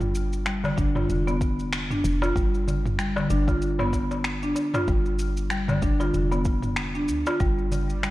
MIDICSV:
0, 0, Header, 1, 6, 480
1, 0, Start_track
1, 0, Tempo, 631579
1, 1788, Time_signature, 4, 2, 24, 8
1, 6160, End_track
2, 0, Start_track
2, 0, Title_t, "Synth drone"
2, 0, Program_c, 0, 95
2, 5621, Note_on_c, 0, 55, 84
2, 5623, Note_on_c, 0, 65, 80
2, 6160, Note_off_c, 0, 55, 0
2, 6160, Note_off_c, 0, 65, 0
2, 6160, End_track
3, 0, Start_track
3, 0, Title_t, "Marimba"
3, 0, Program_c, 1, 12
3, 0, Note_on_c, 1, 55, 75
3, 340, Note_off_c, 1, 55, 0
3, 353, Note_on_c, 1, 55, 80
3, 480, Note_off_c, 1, 55, 0
3, 487, Note_on_c, 1, 50, 73
3, 545, Note_off_c, 1, 50, 0
3, 586, Note_on_c, 1, 62, 75
3, 665, Note_off_c, 1, 62, 0
3, 723, Note_on_c, 1, 65, 89
3, 822, Note_off_c, 1, 65, 0
3, 967, Note_on_c, 1, 59, 91
3, 1025, Note_off_c, 1, 59, 0
3, 1449, Note_on_c, 1, 62, 67
3, 1545, Note_off_c, 1, 62, 0
3, 1687, Note_on_c, 1, 65, 91
3, 1784, Note_off_c, 1, 65, 0
3, 1790, Note_on_c, 1, 55, 75
3, 2259, Note_off_c, 1, 55, 0
3, 2269, Note_on_c, 1, 55, 83
3, 2398, Note_off_c, 1, 55, 0
3, 2403, Note_on_c, 1, 50, 77
3, 2463, Note_off_c, 1, 50, 0
3, 2512, Note_on_c, 1, 62, 75
3, 2588, Note_off_c, 1, 62, 0
3, 2651, Note_on_c, 1, 65, 92
3, 2746, Note_off_c, 1, 65, 0
3, 2890, Note_on_c, 1, 59, 95
3, 2946, Note_off_c, 1, 59, 0
3, 3368, Note_on_c, 1, 62, 73
3, 3465, Note_off_c, 1, 62, 0
3, 3609, Note_on_c, 1, 65, 92
3, 3705, Note_off_c, 1, 65, 0
3, 3713, Note_on_c, 1, 55, 69
3, 4180, Note_off_c, 1, 55, 0
3, 4191, Note_on_c, 1, 55, 82
3, 4319, Note_off_c, 1, 55, 0
3, 4326, Note_on_c, 1, 50, 75
3, 4384, Note_off_c, 1, 50, 0
3, 4428, Note_on_c, 1, 62, 75
3, 4506, Note_off_c, 1, 62, 0
3, 4560, Note_on_c, 1, 65, 89
3, 4661, Note_off_c, 1, 65, 0
3, 4802, Note_on_c, 1, 59, 86
3, 4862, Note_off_c, 1, 59, 0
3, 5282, Note_on_c, 1, 62, 69
3, 5382, Note_off_c, 1, 62, 0
3, 5523, Note_on_c, 1, 65, 93
3, 5622, Note_off_c, 1, 65, 0
3, 5624, Note_on_c, 1, 55, 75
3, 6096, Note_off_c, 1, 55, 0
3, 6104, Note_on_c, 1, 55, 73
3, 6160, Note_off_c, 1, 55, 0
3, 6160, End_track
4, 0, Start_track
4, 0, Title_t, "FM bass"
4, 0, Program_c, 2, 39
4, 0, Note_on_c, 2, 31, 87
4, 562, Note_off_c, 2, 31, 0
4, 590, Note_on_c, 2, 31, 92
4, 795, Note_off_c, 2, 31, 0
4, 832, Note_on_c, 2, 29, 70
4, 1522, Note_off_c, 2, 29, 0
4, 1551, Note_on_c, 2, 29, 95
4, 1755, Note_off_c, 2, 29, 0
4, 1789, Note_on_c, 2, 31, 93
4, 2481, Note_off_c, 2, 31, 0
4, 2512, Note_on_c, 2, 31, 93
4, 3442, Note_off_c, 2, 31, 0
4, 3707, Note_on_c, 2, 31, 90
4, 4400, Note_off_c, 2, 31, 0
4, 4425, Note_on_c, 2, 31, 92
4, 4632, Note_off_c, 2, 31, 0
4, 4668, Note_on_c, 2, 29, 78
4, 5384, Note_on_c, 2, 38, 96
4, 5396, Note_off_c, 2, 29, 0
4, 5500, Note_off_c, 2, 38, 0
4, 5626, Note_on_c, 2, 31, 85
4, 6160, Note_off_c, 2, 31, 0
4, 6160, End_track
5, 0, Start_track
5, 0, Title_t, "Darbuka"
5, 484, Note_on_c, 9, 64, 77
5, 494, Note_on_c, 9, 63, 69
5, 560, Note_off_c, 9, 64, 0
5, 570, Note_off_c, 9, 63, 0
5, 727, Note_on_c, 9, 63, 61
5, 735, Note_on_c, 9, 62, 50
5, 803, Note_off_c, 9, 63, 0
5, 811, Note_off_c, 9, 62, 0
5, 968, Note_on_c, 9, 62, 55
5, 1044, Note_off_c, 9, 62, 0
5, 1686, Note_on_c, 9, 63, 77
5, 1762, Note_off_c, 9, 63, 0
5, 2032, Note_on_c, 9, 64, 75
5, 2108, Note_off_c, 9, 64, 0
5, 2406, Note_on_c, 9, 63, 69
5, 2482, Note_off_c, 9, 63, 0
5, 2644, Note_on_c, 9, 62, 50
5, 2720, Note_off_c, 9, 62, 0
5, 2882, Note_on_c, 9, 62, 59
5, 2884, Note_on_c, 9, 63, 78
5, 2958, Note_off_c, 9, 62, 0
5, 2960, Note_off_c, 9, 63, 0
5, 2987, Note_on_c, 9, 62, 48
5, 3063, Note_off_c, 9, 62, 0
5, 3125, Note_on_c, 9, 62, 61
5, 3201, Note_off_c, 9, 62, 0
5, 3462, Note_on_c, 9, 62, 47
5, 3538, Note_off_c, 9, 62, 0
5, 3605, Note_on_c, 9, 63, 80
5, 3681, Note_off_c, 9, 63, 0
5, 4323, Note_on_c, 9, 64, 80
5, 4327, Note_on_c, 9, 63, 58
5, 4399, Note_off_c, 9, 64, 0
5, 4403, Note_off_c, 9, 63, 0
5, 4562, Note_on_c, 9, 63, 58
5, 4568, Note_on_c, 9, 62, 48
5, 4638, Note_off_c, 9, 63, 0
5, 4644, Note_off_c, 9, 62, 0
5, 4805, Note_on_c, 9, 62, 55
5, 4881, Note_off_c, 9, 62, 0
5, 5525, Note_on_c, 9, 63, 79
5, 5601, Note_off_c, 9, 63, 0
5, 5864, Note_on_c, 9, 64, 74
5, 5940, Note_off_c, 9, 64, 0
5, 6160, End_track
6, 0, Start_track
6, 0, Title_t, "Drums"
6, 3, Note_on_c, 9, 45, 65
6, 7, Note_on_c, 9, 82, 20
6, 79, Note_off_c, 9, 45, 0
6, 83, Note_off_c, 9, 82, 0
6, 113, Note_on_c, 9, 82, 83
6, 189, Note_off_c, 9, 82, 0
6, 250, Note_on_c, 9, 82, 33
6, 326, Note_off_c, 9, 82, 0
6, 348, Note_on_c, 9, 26, 93
6, 353, Note_on_c, 9, 82, 40
6, 424, Note_off_c, 9, 26, 0
6, 429, Note_off_c, 9, 82, 0
6, 488, Note_on_c, 9, 82, 21
6, 564, Note_off_c, 9, 82, 0
6, 589, Note_on_c, 9, 36, 96
6, 591, Note_on_c, 9, 82, 73
6, 665, Note_off_c, 9, 36, 0
6, 667, Note_off_c, 9, 82, 0
6, 724, Note_on_c, 9, 45, 74
6, 729, Note_on_c, 9, 82, 32
6, 800, Note_off_c, 9, 45, 0
6, 805, Note_off_c, 9, 82, 0
6, 832, Note_on_c, 9, 82, 45
6, 908, Note_off_c, 9, 82, 0
6, 971, Note_on_c, 9, 82, 19
6, 1047, Note_off_c, 9, 82, 0
6, 1070, Note_on_c, 9, 36, 100
6, 1073, Note_on_c, 9, 82, 75
6, 1146, Note_off_c, 9, 36, 0
6, 1149, Note_off_c, 9, 82, 0
6, 1211, Note_on_c, 9, 82, 30
6, 1287, Note_off_c, 9, 82, 0
6, 1312, Note_on_c, 9, 26, 101
6, 1316, Note_on_c, 9, 82, 42
6, 1388, Note_off_c, 9, 26, 0
6, 1392, Note_off_c, 9, 82, 0
6, 1448, Note_on_c, 9, 45, 67
6, 1452, Note_on_c, 9, 82, 20
6, 1524, Note_off_c, 9, 45, 0
6, 1528, Note_off_c, 9, 82, 0
6, 1556, Note_on_c, 9, 82, 85
6, 1632, Note_off_c, 9, 82, 0
6, 1695, Note_on_c, 9, 82, 32
6, 1771, Note_off_c, 9, 82, 0
6, 1790, Note_on_c, 9, 36, 111
6, 1798, Note_on_c, 9, 82, 42
6, 1866, Note_off_c, 9, 36, 0
6, 1874, Note_off_c, 9, 82, 0
6, 1932, Note_on_c, 9, 82, 20
6, 2008, Note_off_c, 9, 82, 0
6, 2037, Note_on_c, 9, 82, 81
6, 2113, Note_off_c, 9, 82, 0
6, 2169, Note_on_c, 9, 45, 71
6, 2174, Note_on_c, 9, 82, 33
6, 2245, Note_off_c, 9, 45, 0
6, 2250, Note_off_c, 9, 82, 0
6, 2270, Note_on_c, 9, 26, 90
6, 2275, Note_on_c, 9, 82, 42
6, 2346, Note_off_c, 9, 26, 0
6, 2351, Note_off_c, 9, 82, 0
6, 2411, Note_on_c, 9, 82, 22
6, 2487, Note_off_c, 9, 82, 0
6, 2511, Note_on_c, 9, 82, 73
6, 2587, Note_off_c, 9, 82, 0
6, 2646, Note_on_c, 9, 36, 100
6, 2650, Note_on_c, 9, 82, 36
6, 2722, Note_off_c, 9, 36, 0
6, 2726, Note_off_c, 9, 82, 0
6, 2752, Note_on_c, 9, 82, 47
6, 2828, Note_off_c, 9, 82, 0
6, 2885, Note_on_c, 9, 45, 71
6, 2889, Note_on_c, 9, 82, 22
6, 2961, Note_off_c, 9, 45, 0
6, 2965, Note_off_c, 9, 82, 0
6, 2988, Note_on_c, 9, 36, 62
6, 2990, Note_on_c, 9, 82, 71
6, 3064, Note_off_c, 9, 36, 0
6, 3066, Note_off_c, 9, 82, 0
6, 3125, Note_on_c, 9, 82, 32
6, 3201, Note_off_c, 9, 82, 0
6, 3224, Note_on_c, 9, 26, 92
6, 3229, Note_on_c, 9, 82, 44
6, 3300, Note_off_c, 9, 26, 0
6, 3305, Note_off_c, 9, 82, 0
6, 3363, Note_on_c, 9, 82, 22
6, 3439, Note_off_c, 9, 82, 0
6, 3466, Note_on_c, 9, 82, 83
6, 3542, Note_off_c, 9, 82, 0
6, 3601, Note_on_c, 9, 45, 67
6, 3605, Note_on_c, 9, 82, 32
6, 3677, Note_off_c, 9, 45, 0
6, 3681, Note_off_c, 9, 82, 0
6, 3708, Note_on_c, 9, 36, 116
6, 3708, Note_on_c, 9, 82, 43
6, 3784, Note_off_c, 9, 36, 0
6, 3784, Note_off_c, 9, 82, 0
6, 3844, Note_on_c, 9, 82, 21
6, 3920, Note_off_c, 9, 82, 0
6, 3945, Note_on_c, 9, 82, 83
6, 4021, Note_off_c, 9, 82, 0
6, 4083, Note_on_c, 9, 82, 35
6, 4159, Note_off_c, 9, 82, 0
6, 4183, Note_on_c, 9, 26, 97
6, 4187, Note_on_c, 9, 82, 44
6, 4259, Note_off_c, 9, 26, 0
6, 4263, Note_off_c, 9, 82, 0
6, 4319, Note_on_c, 9, 45, 74
6, 4323, Note_on_c, 9, 82, 21
6, 4395, Note_off_c, 9, 45, 0
6, 4399, Note_off_c, 9, 82, 0
6, 4426, Note_on_c, 9, 36, 103
6, 4426, Note_on_c, 9, 82, 74
6, 4502, Note_off_c, 9, 36, 0
6, 4502, Note_off_c, 9, 82, 0
6, 4565, Note_on_c, 9, 82, 34
6, 4641, Note_off_c, 9, 82, 0
6, 4668, Note_on_c, 9, 82, 47
6, 4744, Note_off_c, 9, 82, 0
6, 4803, Note_on_c, 9, 82, 22
6, 4879, Note_off_c, 9, 82, 0
6, 4903, Note_on_c, 9, 82, 72
6, 4906, Note_on_c, 9, 36, 104
6, 4979, Note_off_c, 9, 82, 0
6, 4982, Note_off_c, 9, 36, 0
6, 5036, Note_on_c, 9, 45, 69
6, 5040, Note_on_c, 9, 82, 31
6, 5112, Note_off_c, 9, 45, 0
6, 5116, Note_off_c, 9, 82, 0
6, 5140, Note_on_c, 9, 26, 93
6, 5144, Note_on_c, 9, 82, 43
6, 5216, Note_off_c, 9, 26, 0
6, 5220, Note_off_c, 9, 82, 0
6, 5280, Note_on_c, 9, 82, 21
6, 5356, Note_off_c, 9, 82, 0
6, 5383, Note_on_c, 9, 82, 86
6, 5459, Note_off_c, 9, 82, 0
6, 5519, Note_on_c, 9, 82, 34
6, 5595, Note_off_c, 9, 82, 0
6, 5624, Note_on_c, 9, 82, 43
6, 5625, Note_on_c, 9, 36, 111
6, 5700, Note_off_c, 9, 82, 0
6, 5701, Note_off_c, 9, 36, 0
6, 5762, Note_on_c, 9, 82, 21
6, 5838, Note_off_c, 9, 82, 0
6, 5867, Note_on_c, 9, 82, 79
6, 5943, Note_off_c, 9, 82, 0
6, 6001, Note_on_c, 9, 82, 34
6, 6077, Note_off_c, 9, 82, 0
6, 6105, Note_on_c, 9, 26, 85
6, 6109, Note_on_c, 9, 82, 43
6, 6160, Note_off_c, 9, 26, 0
6, 6160, Note_off_c, 9, 82, 0
6, 6160, End_track
0, 0, End_of_file